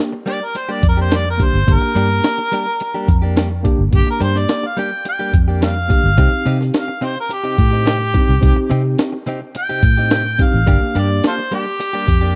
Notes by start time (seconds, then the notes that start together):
Already playing: A#3 D4 G4
0.13 muted clean electric guitar stroke
0.26 G3 A#3 D4 G4 D5, closed hi-hat
0.41 muted clean electric guitar stroke
0.45 A#4
0.55 C5, muted clean electric guitar stroke, closed hi-hat
0.69 G3 A#3 D4 G4 D5
0.83 F2, muted clean electric guitar stroke, kick, closed hi-hat
0.89 A#4
0.97 A#3 D4 G4
1.01 C5
1.11 G3 A#3 D4 G4, snare, closed hi-hat
1.16 D5
1.25 muted clean electric guitar stroke
1.30 A#4
1.38 D2 A#3 D4 G4, muted clean electric guitar stroke, kick, closed hi-hat
1.44 C5
1.53 G1
1.67 G1 A#3 D4 G4, kick, closed hi-hat
1.73 A#4
1.82 muted clean electric guitar stroke
1.95 G2 G3 A#3 D4 G4, closed hi-hat
2.10 muted clean electric guitar stroke
2.24 snare, closed hi-hat
2.38 muted clean electric guitar stroke
2.52 G3 A#3 D4 G4, closed hi-hat
2.67 muted clean electric guitar stroke
2.80 muted clean electric guitar stroke, closed hi-hat
2.94 G3 A#3 D4 G4
3.08 F2, muted clean electric guitar stroke, kick, closed hi-hat
3.22 A#3 D4 G4
3.36 G3 A#3 D4 G4, snare, closed hi-hat
3.51 muted clean electric guitar stroke
3.63 D2 A#3 D4 G4, muted clean electric guitar stroke, kick, closed hi-hat
3.79 G1
3.91 G1 A#3 D4 G4, kick, closed hi-hat
3.96 G4
4.07 A#4, muted fingered electric bass stroke, muted clean electric guitar stroke
4.20 G2 G3 A#3 D4 G4 C5, closed hi-hat
4.36 D5, snare
4.49 snare, closed hi-hat
4.63 F5, muted clean electric guitar stroke
4.77 G3 A#3 D4 G4 G5, closed hi-hat
4.92 muted clean electric guitar stroke
5.05 G5, muted clean electric guitar stroke, closed hi-hat
5.19 G3 A#3 D4 G4
5.33 F2, muted clean electric guitar stroke, kick, closed hi-hat
5.48 A#3 D4 G4
5.61 G3 A#3 D4 G4 F5, snare, closed hi-hat
5.76 muted clean electric guitar stroke
5.88 D2 A#3 D4 G4, muted clean electric guitar stroke, kick, closed hi-hat
6.04 G1
6.17 C2 C3 C4 D#4 G4, kick, closed hi-hat
6.33 muted fingered electric bass stroke
6.46 C3 C4 D#4 G4, closed hi-hat
6.60 muted clean electric guitar stroke, snare
6.74 F5, snare, closed hi-hat
6.88 muted clean electric guitar stroke
7.01 C3 C4 D#4 G4 C5, closed hi-hat
7.16 A#4, muted clean electric guitar stroke
7.29 G4, muted clean electric guitar stroke, closed hi-hat
7.44 C3 C4 D#4 G4
7.58 A2, kick, closed hi-hat
7.71 C4 D#4 G4
7.84 C3 C4 D#4 G4, snare, closed hi-hat
7.99 muted clean electric guitar stroke
8.13 G2 C4 D#4 G4, muted clean electric guitar stroke, kick, closed hi-hat
8.29 C2
8.41 C2 C4 D#4 G4, kick, closed hi-hat
8.56 muted clean electric guitar stroke, muted fingered electric bass stroke
8.70 C3 C4 D#4 G4, closed hi-hat
8.84 muted clean electric guitar stroke
8.98 snare, closed hi-hat
9.13 muted clean electric guitar stroke
9.26 C3 C4 D#4 G4, closed hi-hat
9.41 muted clean electric guitar stroke
9.55 G5, muted clean electric guitar stroke, closed hi-hat
9.69 C3 C4 D#4 G4
9.83 A2, muted clean electric guitar stroke, kick, closed hi-hat
9.97 C4 D#4 G4
10.11 C3 C4 D#4 G4, snare, closed hi-hat
10.25 muted clean electric guitar stroke
10.38 G2 C4 D#4 G4, muted clean electric guitar stroke, kick, closed hi-hat
10.43 F5
10.54 A1
10.67 G1 G3 A#3 D4 G4, kick, closed hi-hat
10.82 muted clean electric guitar stroke
10.95 G2 G3 A#3 D4 G4, closed hi-hat
10.99 D5
11.10 muted clean electric guitar stroke
11.24 F4 A4 C5, snare, closed hi-hat
11.38 muted clean electric guitar stroke
11.52 G3 A#3 D4 G4, closed hi-hat
11.66 muted clean electric guitar stroke
11.80 muted clean electric guitar stroke, closed hi-hat
11.93 G3 A#3 D4 G4
12.07 F2, muted clean electric guitar stroke, kick, closed hi-hat
12.21 A#3 D4 G4